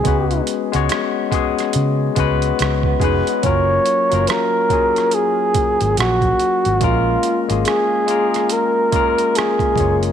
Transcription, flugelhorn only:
X:1
M:4/4
L:1/16
Q:"Swing 16ths" 1/4=71
K:F#
V:1 name="Flugelhorn"
G2 z12 z2 | c4 A4 G4 F4 | E2 z2 G4 A4 G3 z |]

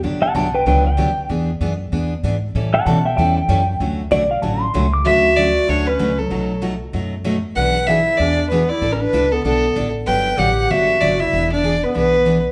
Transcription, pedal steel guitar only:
X:1
M:4/4
L:1/8
Q:"Swing" 1/4=192
K:D
V:1 name="Pedal steel guitar"
z [fa] [fa] [Bg] [Bg] g3 | z8 | z [fa] [fa] [eg] [eg] g3 | z2 d =f a =c'2 d' |
z8 | z8 | z8 | z8 |
z8 | z8 |]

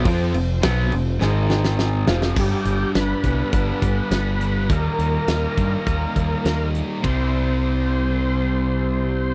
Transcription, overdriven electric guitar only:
X:1
M:4/4
L:1/8
Q:1/4=103
K:Gdor
V:1 name="Overdriven electric guitar" clef=bass
[F,CF] [F,,C,] [=B,,^F,=B,] [=F,,C,] [_A,,_E,_A,]3 [F,,C,=F,] | [G,,D,G,=B,D]8 | [_E,G,B,_E]8 | [C,G,CE]8 |]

